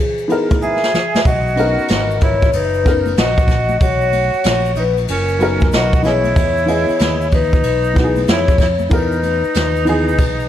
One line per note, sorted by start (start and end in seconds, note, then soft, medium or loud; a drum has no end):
0.00 0.66 G#4 medium
0.18 shaker soft
0.28 0.77 E3 medium
0.28 0.78 B3 medium
0.28 0.79 D#4 medium
0.28 0.79 A#4 medium
0.28 ride soft
0.28 shaker soft
0.51 kick medium
0.51 ride soft
0.51 high conga medium
0.51 shaker soft
0.61 1.21 G#4 medium
0.61 1.22 E5 medium
0.61 high conga medium
0.61 shaker medium
0.83 snare medium
0.83 shaker soft
0.94 snare medium
0.94 low conga medium
0.94 shaker soft
1.15 snare medium
1.15 high conga medium
1.15 shaker soft
1.25 1.76 B1 medium
1.25 2.17 F#4 medium
1.25 2.18 D#5 medium
1.25 kick loud
1.25 ride medium
1.25 shaker medium
1.47 shaker soft
1.56 1.65 D3 soft
1.56 2.48 B3 medium
1.56 2.49 C#4 medium
1.56 ride medium
1.56 high conga soft
1.56 shaker soft
1.60 2.51 D#3 medium
1.60 2.50 A#4 medium
1.79 shaker soft
1.88 2.50 G#1 medium
1.88 snare loud
1.88 hi-hat pedal medium
1.88 ride medium
1.88 high conga soft
1.88 shaker medium
2.11 shaker soft
2.21 2.51 E4 medium
2.21 2.52 C#5 medium
2.21 kick medium
2.21 ride medium
2.21 low conga medium
2.21 shaker soft
2.42 kick medium
2.42 shaker soft
2.53 3.14 F#1 medium
2.53 3.13 D#4 medium
2.53 3.20 B4 loud
2.53 ride medium
2.53 shaker medium
2.74 shaker soft
2.84 3.10 D#3 medium
2.84 3.10 B3 medium
2.84 3.11 C#4 medium
2.84 3.12 A#4 medium
2.84 kick medium
2.84 snare soft
2.84 ride soft
2.84 shaker soft
3.06 ride soft
3.06 high conga medium
3.06 shaker soft
3.17 3.78 A#1 medium
3.17 3.77 F#4 medium
3.17 3.83 D#5 medium
3.17 snare loud
3.17 hi-hat pedal soft
3.17 ride medium
3.17 shaker medium
3.38 kick medium
3.38 shaker soft
3.48 kick medium
3.48 snare soft
3.48 ride medium
3.48 low conga medium
3.48 shaker soft
3.69 high conga medium
3.69 shaker soft
3.80 4.31 B1 medium
3.80 4.72 F#4 medium
3.80 4.73 C#5 medium
3.80 kick loud
3.80 ride medium
3.80 shaker medium
4.01 shaker soft
4.12 ride medium
4.12 high conga soft
4.12 shaker soft
4.33 shaker soft
4.44 5.05 A#1 loud
4.44 snare loud
4.44 hi-hat pedal medium
4.44 ride medium
4.44 high conga soft
4.44 shaker medium
4.66 shaker soft
4.76 4.83 D#4 medium
4.76 4.93 B4 medium
4.76 ride medium
4.76 low conga medium
4.76 shaker soft
4.97 ride soft
4.97 shaker soft
5.08 5.69 F#1 medium
5.08 5.68 C#4 medium
5.08 5.75 A#4 medium
5.08 ride medium
5.08 shaker medium
5.28 shaker soft
5.39 5.88 F#3 medium
5.39 5.89 B3 medium
5.39 5.89 D#4 medium
5.39 5.90 A#4 medium
5.39 ride soft
5.39 shaker soft
5.60 kick medium
5.60 high conga medium
5.60 shaker soft
5.72 6.33 B1 medium
5.72 6.02 F#4 medium
5.72 6.06 D#5 medium
5.72 snare loud
5.72 hi-hat pedal soft
5.72 ride medium
5.72 shaker medium
5.93 kick medium
5.93 shaker soft
6.02 6.44 E3 medium
6.02 6.44 B3 medium
6.02 7.28 E4 medium
6.02 6.45 G#4 medium
6.02 7.29 C#5 loud
6.02 6.45 D#5 medium
6.02 snare soft
6.02 ride medium
6.02 low conga medium
6.02 shaker soft
6.24 ride soft
6.24 high conga medium
6.24 shaker soft
6.36 6.86 E2 loud
6.36 kick loud
6.36 ride medium
6.36 shaker medium
6.57 shaker soft
6.66 7.15 E3 medium
6.66 7.16 B3 medium
6.66 7.17 G#4 medium
6.66 7.17 D#5 medium
6.66 ride medium
6.66 high conga soft
6.66 shaker soft
6.89 muted fretless electric bass stroke soft
6.89 ride soft
6.89 shaker soft
6.99 7.61 D#2 medium
6.99 snare loud
6.99 hi-hat pedal soft
6.99 ride medium
6.99 high conga soft
6.99 shaker medium
7.21 shaker soft
7.31 8.24 D#4 medium
7.31 8.25 B4 loud
7.31 kick medium
7.31 ride medium
7.31 low conga medium
7.31 shaker soft
7.53 kick medium
7.53 shaker soft
7.63 8.25 B1 medium
7.63 ride medium
7.63 shaker medium
7.84 shaker soft
7.94 8.43 E3 medium
7.94 8.44 B3 medium
7.94 8.45 D#4 medium
7.94 8.05 F#4 medium
7.94 kick medium
7.94 snare soft
7.94 ride soft
7.94 shaker soft
8.04 8.48 G#4 medium
8.16 ride medium
8.16 high conga medium
8.16 shaker soft
8.27 8.88 F2 medium
8.27 8.57 E4 medium
8.27 8.58 C#5 medium
8.27 snare loud
8.27 hi-hat pedal soft
8.27 ride medium
8.27 shaker medium
8.48 kick medium
8.48 shaker soft
8.58 8.67 E4 medium
8.58 8.76 C#5 medium
8.58 kick medium
8.58 snare soft
8.58 ride medium
8.58 low conga medium
8.58 shaker soft
8.79 high conga medium
8.79 shaker soft
8.89 9.42 E2 loud
8.89 9.16 E3 medium
8.89 9.16 B3 medium
8.89 10.49 D#4 medium
8.89 9.17 D#4 medium
8.89 9.17 A#4 medium
8.89 kick loud
8.89 ride medium
8.89 shaker medium
8.94 10.49 B4 medium
9.12 shaker soft
9.23 ride medium
9.23 high conga soft
9.23 shaker soft
9.44 muted fretless electric bass stroke soft
9.44 shaker soft
9.54 10.19 D#2 medium
9.54 snare loud
9.54 hi-hat pedal medium
9.54 ride medium
9.54 high conga soft
9.54 shaker medium
9.76 shaker soft
9.85 10.11 E3 medium
9.85 10.12 B3 medium
9.85 10.13 D#4 medium
9.85 ride medium
9.85 low conga medium
9.85 shaker soft
9.89 10.13 G#4 medium
10.08 shaker soft
10.18 10.49 B1 medium
10.18 kick medium
10.18 ride medium
10.18 shaker medium
10.40 shaker soft